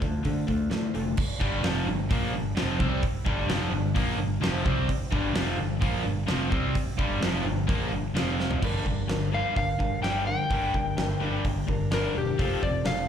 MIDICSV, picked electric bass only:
0, 0, Header, 1, 2, 480
1, 0, Start_track
1, 0, Key_signature, -2, "minor"
1, 0, Tempo, 465116
1, 1213, Time_signature, 4, 2, 24, 8
1, 7452, Tempo, 469851
1, 13441, End_track
2, 0, Start_track
2, 0, Title_t, "Picked electric bass"
2, 0, Program_c, 0, 34
2, 15, Note_on_c, 0, 38, 74
2, 215, Note_off_c, 0, 38, 0
2, 260, Note_on_c, 0, 50, 83
2, 458, Note_off_c, 0, 50, 0
2, 490, Note_on_c, 0, 38, 76
2, 693, Note_off_c, 0, 38, 0
2, 721, Note_on_c, 0, 45, 72
2, 927, Note_off_c, 0, 45, 0
2, 973, Note_on_c, 0, 29, 72
2, 1174, Note_off_c, 0, 29, 0
2, 1452, Note_on_c, 0, 31, 83
2, 1675, Note_off_c, 0, 31, 0
2, 1687, Note_on_c, 0, 29, 93
2, 1912, Note_off_c, 0, 29, 0
2, 1922, Note_on_c, 0, 31, 81
2, 2149, Note_off_c, 0, 31, 0
2, 2175, Note_on_c, 0, 34, 101
2, 2396, Note_off_c, 0, 34, 0
2, 2405, Note_on_c, 0, 31, 82
2, 2631, Note_off_c, 0, 31, 0
2, 2648, Note_on_c, 0, 29, 97
2, 2871, Note_off_c, 0, 29, 0
2, 2889, Note_on_c, 0, 36, 81
2, 3112, Note_off_c, 0, 36, 0
2, 3362, Note_on_c, 0, 31, 90
2, 3575, Note_off_c, 0, 31, 0
2, 3581, Note_on_c, 0, 29, 93
2, 3813, Note_off_c, 0, 29, 0
2, 3819, Note_on_c, 0, 31, 78
2, 4055, Note_off_c, 0, 31, 0
2, 4088, Note_on_c, 0, 34, 99
2, 4292, Note_off_c, 0, 34, 0
2, 4298, Note_on_c, 0, 31, 75
2, 4534, Note_off_c, 0, 31, 0
2, 4542, Note_on_c, 0, 29, 91
2, 4776, Note_off_c, 0, 29, 0
2, 4805, Note_on_c, 0, 36, 97
2, 5029, Note_off_c, 0, 36, 0
2, 5284, Note_on_c, 0, 31, 91
2, 5501, Note_off_c, 0, 31, 0
2, 5507, Note_on_c, 0, 29, 96
2, 5739, Note_off_c, 0, 29, 0
2, 5753, Note_on_c, 0, 31, 76
2, 5983, Note_off_c, 0, 31, 0
2, 6006, Note_on_c, 0, 34, 93
2, 6227, Note_off_c, 0, 34, 0
2, 6233, Note_on_c, 0, 31, 85
2, 6463, Note_off_c, 0, 31, 0
2, 6480, Note_on_c, 0, 29, 91
2, 6708, Note_off_c, 0, 29, 0
2, 6724, Note_on_c, 0, 36, 92
2, 6951, Note_off_c, 0, 36, 0
2, 7209, Note_on_c, 0, 31, 86
2, 7434, Note_off_c, 0, 31, 0
2, 7443, Note_on_c, 0, 29, 93
2, 7670, Note_off_c, 0, 29, 0
2, 7677, Note_on_c, 0, 31, 81
2, 7906, Note_off_c, 0, 31, 0
2, 7930, Note_on_c, 0, 34, 96
2, 8144, Note_off_c, 0, 34, 0
2, 8150, Note_on_c, 0, 31, 72
2, 8379, Note_off_c, 0, 31, 0
2, 8385, Note_on_c, 0, 29, 87
2, 8842, Note_off_c, 0, 29, 0
2, 8885, Note_on_c, 0, 31, 87
2, 9054, Note_off_c, 0, 31, 0
2, 9121, Note_on_c, 0, 31, 79
2, 9291, Note_off_c, 0, 31, 0
2, 9347, Note_on_c, 0, 31, 81
2, 9690, Note_off_c, 0, 31, 0
2, 9843, Note_on_c, 0, 31, 92
2, 10013, Note_off_c, 0, 31, 0
2, 10078, Note_on_c, 0, 31, 80
2, 10250, Note_off_c, 0, 31, 0
2, 10301, Note_on_c, 0, 31, 76
2, 10647, Note_off_c, 0, 31, 0
2, 10804, Note_on_c, 0, 31, 80
2, 10974, Note_off_c, 0, 31, 0
2, 11047, Note_on_c, 0, 31, 84
2, 11216, Note_off_c, 0, 31, 0
2, 11269, Note_on_c, 0, 31, 84
2, 11445, Note_off_c, 0, 31, 0
2, 11516, Note_on_c, 0, 31, 78
2, 11689, Note_off_c, 0, 31, 0
2, 11769, Note_on_c, 0, 31, 98
2, 11938, Note_off_c, 0, 31, 0
2, 12007, Note_on_c, 0, 31, 86
2, 12177, Note_off_c, 0, 31, 0
2, 12236, Note_on_c, 0, 31, 81
2, 12410, Note_off_c, 0, 31, 0
2, 12486, Note_on_c, 0, 28, 80
2, 12656, Note_off_c, 0, 28, 0
2, 12733, Note_on_c, 0, 29, 89
2, 12901, Note_off_c, 0, 29, 0
2, 12973, Note_on_c, 0, 29, 77
2, 13141, Note_off_c, 0, 29, 0
2, 13199, Note_on_c, 0, 29, 87
2, 13441, Note_off_c, 0, 29, 0
2, 13441, End_track
0, 0, End_of_file